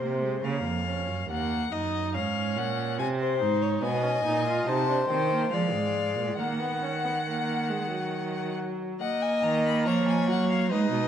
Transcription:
Already playing: violin C5
0.01 cello C3, viola A#3
0.23 viola G#3
0.44 cello C#3, viola A#3, violin F5
0.65 cello F2
0.85 viola C#4
1.08 cello F#2
1.29 cello D#2, viola A#3, violin F#5
1.71 cello F#2, viola D#4, violin D#5
2.14 cello G#2, viola C#4, violin F5
2.57 cello A#2, violin F#5
2.98 cello C3, viola C4, violin G#5
3.20 violin C5
3.40 cello G#2, viola D#4
3.62 violin C#5
3.82 cello B2, viola B3, violin D#5 G#5
4.03 viola C#4
4.25 cello A#2, viola D#4
4.46 viola F4
4.67 cello C3, viola D#4, violin C5 A5
4.89 viola D4
5.08 cello D#3, viola C4, violin G5
5.31 viola A#3
5.51 cello F3, viola G#3, violin D5 F5
5.73 cello G#2
6.16 cello A#2
6.38 cello D#3, viola A#3, violin F#5
6.60 viola B3
6.83 viola C#4
7.04 viola B3
7.26 viola A#3
7.70 viola G#3
7.91 viola F#3
9.00 viola A#3, violin D#5 F#5
9.22 violin G#5
9.43 cello D#3, violin A#5
9.65 violin B5
9.86 cello F3, violin C#5 A#5
10.08 violin G#5
10.28 cello F#3, violin F#5
10.50 violin F5
10.71 cello G#3, viola D#4, violin B4 D#5
10.92 cello B2

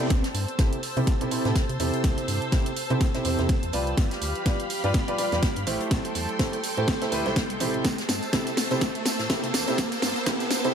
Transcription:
Already playing: riser
0.00 closed hi-hat
0.10 fm bass C2, string machine C5 A5 E6, kick, snare, closed hi-hat, riser
0.24 snare, closed hi-hat
0.34 fm bass G2, closed hi-hat, open hi-hat
0.48 closed hi-hat
0.59 upright piano C3 E4 G4 A4 C5, kick, snare, closed hi-hat
0.73 closed hi-hat
0.83 open hi-hat
0.97 upright piano C3 E4 G4 A4 C5, fm bass C3, closed hi-hat
1.07 kick, snare, closed hi-hat
1.21 upright piano C3 E4 G4 A4 C5, closed hi-hat
1.31 upright piano C3 E4 G4 A4 C5, closed hi-hat, open hi-hat
1.45 fm bass A2, upright piano C3 E4 G4 A4 C5, snare, closed hi-hat
1.56 kick, snare, closed hi-hat
1.69 fm bass C3, closed hi-hat
1.79 fm bass E2, upright piano C3 E4 G4 A4 C5, closed hi-hat, open hi-hat
1.93 closed hi-hat
2.04 fm bass C2, kick, snare, closed hi-hat
2.18 closed hi-hat
2.28 fm bass G2, closed hi-hat, open hi-hat
2.42 closed hi-hat
2.52 upright piano C3 E4 G4 A4 C5, kick, snare, closed hi-hat
2.66 closed hi-hat
2.76 closed hi-hat, open hi-hat
2.90 fm bass C3, upright piano C3 E4 G4 A4 C5, closed hi-hat
3.01 kick, snare, closed hi-hat
3.14 upright piano C3 E4 G4 A4 C5, snare, closed hi-hat
3.25 fm bass E2, upright piano C3 E4 G4 A4 C5, closed hi-hat, open hi-hat
3.39 fm bass E2, upright piano C3 E4 G4 A4 C5, snare, closed hi-hat
3.49 kick, snare, closed hi-hat
3.63 fm bass E2, closed hi-hat
3.73 fm bass C2, upright piano G3 F4 G4 B4 D5, closed hi-hat, open hi-hat
3.87 closed hi-hat
3.97 fm bass G1, string machine G4 F5 B5, kick, snare, closed hi-hat
4.11 snare, closed hi-hat
4.22 fm bass D2, closed hi-hat, open hi-hat
4.36 closed hi-hat
4.45 upright piano G3 F4 G4 B4 D5, kick, snare, closed hi-hat
4.60 closed hi-hat
4.70 open hi-hat
4.84 fm bass G2, upright piano G3 F4 G4 B4 D5, closed hi-hat
4.94 kick, snare, closed hi-hat
5.08 upright piano G3 F4 G4 B4 D5, closed hi-hat
5.18 upright piano G3 F4 G4 B4 D5, closed hi-hat, open hi-hat
5.32 fm bass E2, upright piano G3 F4 G4 B4 D5, snare, closed hi-hat
5.43 kick, snare, closed hi-hat
5.56 fm bass G2, closed hi-hat
5.67 fm bass A1, upright piano A3 E4 G4 A4 C5, string machine A4 G5 C6, closed hi-hat, open hi-hat
5.81 closed hi-hat
5.91 fm bass A1, kick, snare, closed hi-hat
6.05 closed hi-hat
6.15 fm bass E2, closed hi-hat, open hi-hat
6.29 closed hi-hat
6.39 upright piano A3 E4 G4 A4 C5, kick, snare, closed hi-hat
6.53 closed hi-hat
6.64 closed hi-hat, open hi-hat
6.77 fm bass A2, upright piano A3 E4 G4 A4 C5, closed hi-hat
6.88 kick, snare, closed hi-hat
7.02 upright piano A3 E4 G4 A4 C5, snare, closed hi-hat
7.12 fm bass D2, upright piano A3 E4 G4 A4 B4, closed hi-hat, open hi-hat
7.26 fm bass C2, upright piano A3 E4 G4 A4 C5, snare, closed hi-hat
7.36 kick, snare, closed hi-hat
7.50 fm bass C2, closed hi-hat
7.60 fm bass A1, upright piano C3 E4 G4 A4 C5, closed hi-hat, open hi-hat
7.74 closed hi-hat
7.84 fm bass C2, string machine C5 A5 E6, kick, snare, closed hi-hat, tambourine
7.98 snare, closed hi-hat, tambourine
8.09 fm bass G2, snare, closed hi-hat, open hi-hat, tambourine
8.23 closed hi-hat, tambourine
8.33 upright piano C3 E4 G4 A4 C5, kick, snare, closed hi-hat, tambourine
8.47 closed hi-hat, tambourine
8.57 snare, open hi-hat, tambourine
8.71 fm bass C3, upright piano C3 E4 G4 A4 C5, closed hi-hat, tambourine
8.81 kick, snare, closed hi-hat, tambourine
8.95 closed hi-hat
9.06 snare, closed hi-hat, open hi-hat, tambourine
9.19 fm bass A2, snare, closed hi-hat, tambourine
9.30 upright piano C3 E4 G4 A4 C5, kick, snare, closed hi-hat, tambourine
9.44 fm bass C3, closed hi-hat
9.54 fm bass E2, snare, closed hi-hat, open hi-hat, tambourine
9.68 upright piano C3 E4 G4 A4 C5, closed hi-hat, tambourine
9.78 fm bass C2, kick, snare, closed hi-hat, tambourine
9.92 closed hi-hat, tambourine
10.02 fm bass G2, snare, closed hi-hat, open hi-hat, tambourine
10.16 closed hi-hat, tambourine
10.26 upright piano C3 E4 G4 A4 C5, kick, snare, closed hi-hat, tambourine
10.40 closed hi-hat, tambourine
10.51 snare, closed hi-hat, open hi-hat, tambourine
10.64 fm bass C3, upright piano C3 E4 G4 A4 C5, closed hi-hat, tambourine

